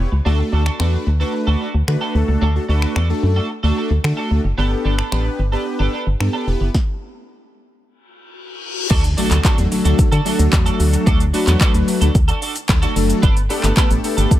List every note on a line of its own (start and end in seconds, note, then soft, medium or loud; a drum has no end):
0.12 0.21 C#2 loud
0.12 muted clean electric guitar stroke soft
0.25 0.43 D2 loud
0.25 0.63 A3 medium
0.25 0.42 D4 medium
0.25 0.63 D4 medium
0.25 0.63 F#4 medium
0.25 0.39 F#4 loud
0.25 0.63 A4 loud
0.25 0.38 A4 medium
0.39 muted clean electric guitar stroke soft
0.52 0.70 D2 loud
0.52 0.66 D4 medium
0.52 0.66 F#4 medium
0.52 0.65 A4 medium
0.66 0.78 D4 medium
0.66 0.79 F#4 medium
0.66 0.79 A4 medium
0.66 finger snap medium
0.79 0.97 E2 medium
0.79 1.08 A3 medium
0.79 0.97 D4 medium
0.79 1.08 D4 medium
0.79 1.08 F#4 medium
0.79 0.93 F#4 medium
0.79 0.92 A4 loud
0.79 1.08 B4 loud
0.79 finger snap loud
0.93 muted clean electric guitar stroke soft
1.06 1.24 D2 medium
1.06 muted clean electric guitar stroke soft
1.20 1.66 A3 medium
1.20 1.67 D4 medium
1.20 1.32 D4 soft
1.20 1.67 F#4 medium
1.20 1.33 F#4 soft
1.20 1.33 A4 medium
1.20 1.67 B4 loud
1.34 muted clean electric guitar stroke soft
1.47 1.56 D2 medium
1.47 1.59 D4 medium
1.47 1.60 F#4 medium
1.47 1.61 A4 medium
1.60 1.74 D4 medium
1.60 1.74 F#4 medium
1.60 1.73 A4 medium
1.74 1.83 D2 medium
1.74 muted clean electric guitar stroke soft
1.88 1.96 D3 loud
1.88 2.14 A3 medium
1.88 2.14 D4 medium
1.88 2.14 F#4 medium
1.88 2.15 B4 loud
1.88 finger snap loud
1.88 muted clean electric guitar stroke soft
2.01 2.14 D4 medium
2.01 2.14 F#4 medium
2.01 2.15 A4 medium
2.15 2.23 D2 loud
2.15 2.47 A3 medium
2.15 2.47 D4 medium
2.15 2.48 F#4 medium
2.15 2.48 A4 loud
2.15 muted clean electric guitar stroke soft
2.28 2.37 C#2 medium
2.28 muted clean electric guitar stroke soft
2.42 2.59 D2 loud
2.42 2.59 D4 medium
2.42 2.55 F#4 medium
2.42 2.54 A4 medium
2.55 2.65 A3 medium
2.55 2.65 D4 medium
2.55 2.65 F#4 medium
2.55 2.65 A4 medium
2.55 muted clean electric guitar stroke soft
2.69 2.86 D2 loud
2.69 2.97 A3 medium
2.69 2.82 D4 medium
2.69 2.97 D4 medium
2.69 2.97 F#4 medium
2.69 2.82 F#4 medium
2.69 2.81 A4 medium
2.69 2.97 B4 loud
2.82 2.94 D4 soft
2.82 2.95 F#4 medium
2.82 2.96 A4 medium
2.82 finger snap medium
2.96 3.13 E2 medium
2.96 3.13 D4 medium
2.96 3.09 F#4 medium
2.96 3.08 A4 medium
2.96 finger snap loud
3.09 3.46 A3 medium
3.09 3.47 D4 medium
3.09 3.47 F#4 medium
3.09 3.47 A4 loud
3.09 muted clean electric guitar stroke soft
3.23 3.40 F#2 medium
3.23 muted clean electric guitar stroke soft
3.36 3.49 D4 medium
3.36 3.49 F#4 medium
3.36 3.50 A4 medium
3.50 muted clean electric guitar stroke soft
3.63 3.72 D2 medium
3.63 3.91 A3 loud
3.63 3.91 D4 medium
3.63 3.75 D4 medium
3.63 3.91 F#4 medium
3.63 3.76 F#4 medium
3.63 3.77 A4 medium
3.63 3.92 A4 loud
3.77 3.90 D4 medium
3.77 3.90 F#4 medium
3.77 3.89 A4 medium
3.90 3.99 D2 medium
3.90 muted clean electric guitar stroke medium
4.04 4.13 D3 loud
4.04 4.41 A3 medium
4.04 4.41 D4 medium
4.04 4.41 F#4 medium
4.04 4.41 A4 loud
4.04 finger snap loud
4.04 muted clean electric guitar stroke soft
4.17 4.30 D4 medium
4.17 4.30 F#4 medium
4.17 4.31 A4 medium
4.31 4.40 D2 medium
4.31 muted clean electric guitar stroke soft
4.44 4.53 F#1 medium
4.44 muted clean electric guitar stroke soft
4.58 4.75 G1 loud
4.58 4.75 B3 medium
4.58 4.95 B3 loud
4.58 4.95 D4 medium
4.58 4.71 D4 loud
4.58 4.95 G4 medium
4.58 4.95 A4 loud
4.58 4.70 A4 loud
4.71 muted clean electric guitar stroke soft
4.85 5.02 G1 medium
4.85 4.98 B3 medium
4.85 4.98 D4 medium
4.85 4.97 A4 medium
4.98 5.11 B3 medium
4.98 5.11 D4 medium
4.98 5.12 A4 medium
4.98 finger snap medium
5.12 5.29 A1 medium
5.12 5.29 B3 medium
5.12 5.40 B3 medium
5.12 5.40 D4 medium
5.12 5.25 D4 medium
5.12 5.40 G4 medium
5.12 5.24 A4 medium
5.12 5.40 B4 loud
5.12 finger snap loud
5.25 muted clean electric guitar stroke soft
5.39 5.56 G1 medium
5.39 muted clean electric guitar stroke soft
5.52 5.99 B3 medium
5.52 5.65 B3 medium
5.52 5.99 D4 medium
5.52 5.65 D4 medium
5.52 5.99 G4 medium
5.52 5.66 A4 medium
5.52 5.99 B4 loud
5.66 muted clean electric guitar stroke soft
5.79 5.88 G1 medium
5.79 5.92 B3 medium
5.79 5.93 D4 medium
5.79 5.93 A4 medium
5.93 6.06 B3 medium
5.93 6.06 D4 medium
5.93 6.05 A4 medium
6.06 6.15 G1 medium
6.06 muted clean electric guitar stroke soft
6.20 6.29 G2 loud
6.20 6.46 B3 medium
6.20 6.47 D4 medium
6.20 6.46 G4 medium
6.20 6.48 A4 loud
6.20 finger snap loud
6.20 muted clean electric guitar stroke soft
6.33 6.47 B3 medium
6.33 6.47 D4 medium
6.33 6.48 A4 medium
6.47 6.56 E1 loud
6.47 6.69 B3 loud
6.47 6.69 E4 medium
6.47 6.69 G4 medium
6.47 6.69 B4 loud
6.47 muted clean electric guitar stroke soft
6.61 6.69 F#1 loud
6.61 muted clean electric guitar stroke soft
6.75 kick loud
6.75 snare medium
7.83 reverse cymbal medium
8.90 9.16 D2 loud
8.90 9.07 D4 medium
8.90 9.04 F#4 medium
8.90 9.03 A4 medium
8.90 kick loud
8.90 crash loud
8.90 impact medium
8.90 shaker medium
9.04 muted clean electric guitar stroke soft
9.04 closed hi-hat soft
9.04 shaker soft
9.17 9.36 F#3 loud
9.17 9.36 A3 medium
9.17 9.31 D4 medium
9.17 9.36 D4 medium
9.17 9.36 F#4 medium
9.17 9.30 F#4 medium
9.17 9.36 A4 loud
9.17 9.29 A4 medium
9.17 open hi-hat medium
9.17 shaker medium
9.31 9.40 D2 medium
9.31 9.43 D4 medium
9.31 9.44 F#4 medium
9.31 9.44 A4 medium
9.31 clap medium
9.31 closed hi-hat medium
9.31 shaker medium
9.44 9.54 F#3 loud
9.44 9.54 A3 medium
9.44 9.61 D4 medium
9.44 9.54 D4 medium
9.44 9.54 F#4 medium
9.44 9.58 F#4 loud
9.44 9.54 A4 loud
9.44 9.57 A4 loud
9.44 kick loud
9.44 clap loud
9.44 shaker medium
9.58 9.67 E2 medium
9.58 9.67 F#3 medium
9.58 9.67 A3 medium
9.58 9.67 D4 medium
9.58 9.68 F#4 medium
9.58 9.68 A4 loud
9.58 muted clean electric guitar stroke soft
9.58 closed hi-hat medium
9.58 shaker soft
9.71 10.09 F#3 medium
9.71 10.09 A3 medium
9.71 10.09 D4 medium
9.71 10.09 F#4 medium
9.71 10.09 A4 loud
9.71 muted clean electric guitar stroke soft
9.71 open hi-hat medium
9.71 shaker medium
9.85 9.94 D2 medium
9.85 9.97 D4 medium
9.85 9.98 F#4 medium
9.85 9.98 A4 medium
9.85 closed hi-hat medium
9.85 shaker medium
9.98 10.04 D3 soft
9.98 muted clean electric guitar stroke soft
9.98 kick loud
9.98 shaker medium
10.12 10.21 D3 loud
10.12 10.24 D4 medium
10.12 10.25 F#4 medium
10.12 10.26 A4 medium
10.12 closed hi-hat soft
10.12 shaker soft
10.25 10.78 F#3 loud
10.25 10.78 A3 medium
10.25 10.39 D4 medium
10.25 10.79 D4 medium
10.25 10.79 F#4 medium
10.25 10.39 F#4 medium
10.25 10.79 A4 loud
10.25 10.38 A4 medium
10.25 open hi-hat medium
10.25 shaker medium
10.39 10.48 D2 loud
10.39 muted clean electric guitar stroke medium
10.39 closed hi-hat medium
10.39 shaker medium
10.52 10.70 E2 loud
10.52 muted clean electric guitar stroke soft
10.52 kick loud
10.52 clap loud
10.52 shaker medium
10.66 10.78 D4 medium
10.66 10.79 F#4 medium
10.66 10.79 A4 medium
10.66 closed hi-hat medium
10.66 shaker medium
10.79 10.97 D2 loud
10.79 11.23 F#3 medium
10.79 11.23 A3 medium
10.79 11.23 D4 medium
10.79 11.23 F#4 medium
10.79 11.23 A4 loud
10.79 muted clean electric guitar stroke soft
10.79 open hi-hat medium
10.79 shaker medium
10.93 muted clean electric guitar stroke soft
10.93 closed hi-hat medium
10.93 shaker medium
11.06 11.32 D2 loud
11.06 11.24 D4 medium
11.06 11.20 F#4 loud
11.06 11.19 A4 loud
11.06 kick loud
11.06 shaker medium
11.20 muted clean electric guitar stroke soft
11.20 closed hi-hat soft
11.20 shaker soft
11.33 12.08 F#3 loud
11.33 12.08 A3 medium
11.33 11.47 D4 medium
11.33 12.08 D4 medium
11.33 12.08 F#4 medium
11.33 11.47 F#4 medium
11.33 11.46 A4 medium
11.33 12.08 B4 loud
11.33 open hi-hat medium
11.33 shaker medium
11.47 11.56 E2 loud
11.47 11.59 D4 medium
11.47 11.60 F#4 medium
11.47 11.61 A4 medium
11.47 clap medium
11.47 closed hi-hat medium
11.47 shaker medium
11.60 11.78 D4 medium
11.60 11.74 F#4 medium
11.60 11.73 A4 loud
11.60 kick loud
11.60 clap loud
11.60 shaker medium
11.74 11.83 D2 medium
11.74 muted clean electric guitar stroke soft
11.74 closed hi-hat medium
11.74 shaker medium
11.88 muted clean electric guitar stroke soft
11.88 open hi-hat medium
11.88 shaker medium
12.01 12.10 D2 medium
12.01 12.13 D4 medium
12.01 12.14 F#4 medium
12.01 12.15 A4 medium
12.01 closed hi-hat medium
12.01 shaker medium
12.15 12.32 D2 medium
12.15 muted clean electric guitar stroke soft
12.15 kick loud
12.15 shaker medium
12.28 12.40 D4 medium
12.28 12.41 F#4 medium
12.28 12.42 A4 medium
12.28 closed hi-hat soft
12.28 shaker soft
12.41 12.55 D4 medium
12.41 12.55 F#4 medium
12.41 12.54 A4 medium
12.41 open hi-hat medium
12.41 shaker medium
12.55 muted clean electric guitar stroke medium
12.55 closed hi-hat medium
12.55 shaker medium
12.69 12.86 D2 loud
12.69 12.78 F#3 medium
12.69 12.78 A3 medium
12.69 12.78 D4 medium
12.69 12.78 F#4 medium
12.69 12.78 A4 loud
12.69 muted clean electric guitar stroke soft
12.69 kick loud
12.69 clap loud
12.69 shaker medium
12.82 12.92 F#3 medium
12.82 12.92 A3 medium
12.82 12.92 D4 medium
12.82 12.94 D4 medium
12.82 12.92 F#4 medium
12.82 12.95 F#4 medium
12.82 12.96 A4 medium
12.82 12.92 A4 medium
12.82 closed hi-hat medium
12.82 shaker medium
12.96 13.13 F#1 medium
12.96 13.23 F#3 loud
12.96 13.23 A3 medium
12.96 13.23 D4 medium
12.96 13.23 F#4 medium
12.96 13.23 A4 loud
12.96 muted clean electric guitar stroke soft
12.96 open hi-hat medium
12.96 shaker medium
13.09 muted clean electric guitar stroke soft
13.09 closed hi-hat medium
13.09 shaker medium
13.22 13.48 G1 loud
13.22 13.40 B3 medium
13.22 13.36 D4 loud
13.22 13.35 A4 loud
13.22 kick loud
13.22 shaker medium
13.36 muted clean electric guitar stroke medium
13.36 closed hi-hat soft
13.36 shaker soft
13.49 13.68 A3 loud
13.49 13.63 B3 medium
13.49 13.69 B3 medium
13.49 13.69 D4 medium
13.49 13.63 D4 medium
13.49 13.69 G4 loud
13.49 13.69 A4 loud
13.49 13.62 A4 medium
13.49 open hi-hat medium
13.49 shaker medium
13.63 13.72 G1 medium
13.63 13.75 B3 medium
13.63 13.76 D4 medium
13.63 13.77 A4 medium
13.63 clap medium
13.63 closed hi-hat medium
13.63 shaker medium
13.76 13.86 A3 loud
13.76 13.94 B3 medium
13.76 13.86 B3 medium
13.76 13.86 D4 medium
13.76 13.90 D4 loud
13.76 13.86 G4 medium
13.76 13.89 A4 loud
13.76 13.86 B4 loud
13.76 kick loud
13.76 clap loud
13.76 shaker medium
13.90 13.99 A1 medium
13.90 14.00 A3 medium
13.90 14.00 B3 medium
13.90 14.00 D4 medium
13.90 14.00 G4 medium
13.90 14.00 A4 loud
13.90 muted clean electric guitar stroke soft
13.90 closed hi-hat medium
13.90 shaker medium
14.04 14.39 A3 medium
14.04 14.39 B3 medium
14.04 14.39 D4 medium
14.04 14.39 G4 medium
14.04 14.39 A4 loud
14.04 muted clean electric guitar stroke soft
14.04 open hi-hat medium
14.04 shaker medium
14.17 14.26 G1 medium
14.17 14.29 B3 medium
14.17 14.30 D4 medium
14.17 14.31 A4 medium
14.17 closed hi-hat medium
14.17 shaker medium
14.31 14.37 G2 medium
14.31 muted clean electric guitar stroke soft
14.31 kick loud
14.31 shaker medium